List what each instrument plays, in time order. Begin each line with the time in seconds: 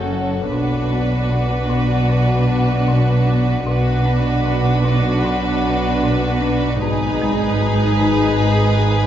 Already playing: double bass section F#1, synth drone F#1, cello section F#2, viola section C#4, glass harmonica F#4 A4 C#5, violin section F#4 A4
0.12 marimba F#3
0.49 double bass section B1, synth drone B1, cello section B2, marimba B2, viola section D4, violin section F#4 B4, glass harmonica F#4 B4 D5
0.92 marimba B3
1.31 marimba B2
1.70 marimba B2
2.09 marimba B2
2.49 marimba B3
2.88 marimba B2
3.27 marimba B3
3.65 double bass section B1, synth drone B1, cello section B2, marimba B2, viola section D4, glass harmonica F#4 B4 D5, violin section F#4 B4
4.06 marimba B3
4.45 marimba B2
4.85 marimba B2
5.25 marimba B2
5.64 marimba B3
6.03 marimba B2
6.42 marimba B3
6.81 double bass section G#1, synth drone G#1, marimba G#2, cello section G#2, viola section D#4, glass harmonica G#4 B4 D#5, violin section G#4 B4
7.22 marimba G#3
7.61 marimba G#2
7.99 marimba G#2
8.39 marimba G#2
8.80 marimba G#3